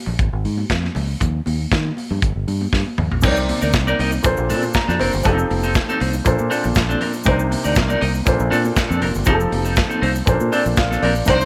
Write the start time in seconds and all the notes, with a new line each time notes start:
0.06 A#1, low conga
0.18 G#1, kick, closed hi-hat, muted conga
0.33 G#1
0.45 G#2, open hi-hat
0.57 high conga
0.70 F2, kick, snare, closed hi-hat
0.83 snare, high conga
0.95 C#2, open hi-hat, muted conga, high conga, low conga
1.20 D#2, kick, closed hi-hat, muted conga, low conga
1.46 D#2, open hi-hat, muted conga, high conga
1.72 D#3, kick, snare, closed hi-hat
1.85 high conga
1.97 open hi-hat, muted conga, high conga
2.10 G2, low conga
2.22 G1, kick, closed hi-hat, muted conga
2.36 G1
2.48 G2, open hi-hat, muted conga
2.61 high conga
2.73 G2, kick, snare, muted conga
2.86 high conga
2.98 D#2, mid tom, high conga, low conga
3.12 A#1, floor tom
3.21 C2 C3 C4 D#4 A#4 D5, kick, crash, low conga, shaker
3.25 C#5
3.31 D5
3.37 muted clean electric guitar stroke, shaker
3.49 muted clean electric guitar stroke, open hi-hat, muted conga, high conga
3.61 D2 D#4 A#4 D5, shaker
3.73 C2, kick, snare, closed hi-hat, muted conga, shaker
3.87 D#4 A#4 D5, high conga, shaker
3.99 C2 D#4 A#4 D#5, open hi-hat, muted conga, high conga
4.12 muted clean electric guitar stroke, shaker
4.23 A#1 A#2 A#3 D4 A4 C5, kick, closed hi-hat, shaker
4.37 A#1, muted clean electric guitar stroke, shaker
4.49 A#2 C4 D4 A4, open hi-hat, shaker
4.62 muted clean electric guitar stroke, high conga, shaker
4.74 A#5, kick, snare, closed hi-hat, shaker
4.88 F2 C4 D4 A4, snare, high conga, shaker
4.99 F1 C4 D4 A#4 C5, open hi-hat, muted conga, high conga, low conga
5.13 G1, muted clean electric guitar stroke, shaker
5.23 F1 F3 C4 D#4 G4 A4, kick, closed hi-hat, muted conga, low conga, shaker
5.38 muted clean electric guitar stroke, shaker
5.51 F1, muted clean electric guitar stroke, open hi-hat, muted conga, high conga
5.63 C4 D#4 A4, shaker
5.75 kick, snare, closed hi-hat, muted conga, shaker
5.89 C4 D#4 A4, high conga, shaker
6.00 C2 C4 D#4 C5, open hi-hat, muted conga, high conga
6.13 muted clean electric guitar stroke, shaker
6.24 A#1 A#2 A#3 D4 A4 C5, kick, closed hi-hat, muted conga, shaker
6.39 A#2, muted clean electric guitar stroke, shaker
6.50 C4 D4 A4, open hi-hat, muted conga, shaker
6.64 A#1, muted clean electric guitar stroke, high conga, shaker
6.75 A#1, muted clean electric guitar stroke, kick, snare, closed hi-hat, shaker
6.89 C4 D4 A4, high conga, shaker
7.01 C4 D4 A#4, open hi-hat, high conga, low conga
7.13 muted clean electric guitar stroke, shaker
7.24 C2 C3 A#3 D4 D#4 A#4 D5, kick, closed hi-hat, muted conga, low conga, shaker
7.28 C5
7.39 muted clean electric guitar stroke, shaker
7.51 muted clean electric guitar stroke, open hi-hat, high conga
7.64 D2 D#4 A#4 D5, shaker
7.75 C2, muted clean electric guitar stroke, kick, snare, closed hi-hat, shaker
7.89 D#4 A#4 D5, high conga, shaker
8.01 C2 D#4 A#4 D#5, open hi-hat, muted conga, high conga
8.14 muted clean electric guitar stroke, shaker
8.26 A#1 A#2 A#3 C#4 A4 C5, kick, closed hi-hat, muted conga, shaker
8.33 D4
8.39 A#1, muted clean electric guitar stroke, shaker
8.50 A#2 C4 D4 A4, open hi-hat, shaker
8.64 muted clean electric guitar stroke, high conga, shaker
8.76 muted clean electric guitar stroke, kick, snare, closed hi-hat, muted conga, shaker
8.89 F2 C4 D4 A4, high conga, shaker
9.01 F1 C4 D4 A#4, open hi-hat, muted conga, high conga, low conga
9.14 G1, muted clean electric guitar stroke, shaker
9.25 F1 F3 C4 D#4 G4 A4, kick, closed hi-hat, low conga, shaker
9.29 G#4
9.35 A4
9.40 muted clean electric guitar stroke, shaker
9.51 F1, muted clean electric guitar stroke, open hi-hat, muted conga, high conga
9.65 C4 D#4 A4, shaker
9.76 muted clean electric guitar stroke, kick, snare, closed hi-hat, muted conga, shaker
9.90 C4 D#4 A4, high conga, shaker
10.01 C2 C4 D#4 C5, open hi-hat, muted conga, high conga
10.15 shaker
10.26 A#1 A#2 A#3 C#4 A4 C5, kick, closed hi-hat, shaker
10.34 D4
10.40 A#2, muted clean electric guitar stroke, shaker
10.52 C4 D4 A4 D5, open hi-hat, shaker
10.66 A#1, muted clean electric guitar stroke, high conga, shaker
10.77 A#1 F5, muted clean electric guitar stroke, kick, snare, closed hi-hat, shaker
10.91 C4 D4 A4, snare, high conga, shaker
11.03 A#1 C4 D4 A#4 D5, open hi-hat, high conga, low conga
11.15 shaker
11.25 C2 C3 A#3 C4 D4 D#4 A#4 C5 D5, kick, closed hi-hat, low conga, shaker
11.41 muted clean electric guitar stroke, shaker